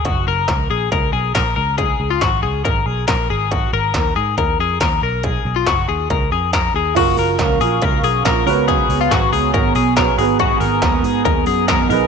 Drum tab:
CC |--------|--------|--------|--------|
HH |x-x-x-x-|x-x-x-x-|x-x-x-x-|x-x-x-x-|
SD |--o---o-|--o---o-|--o---o-|--o---o-|
BD |o-o-o-o-|o-o-o-o-|o-o-o-o-|o-o-o-o-|

CC |x-------|--------|--------|
HH |xoxoxoxo|xoxoxoxo|xoxoxoxo|
SD |--o---o-|--o---o-|--o---o-|
BD |o-o-o-o-|o-o-o-o-|o-o-o-o-|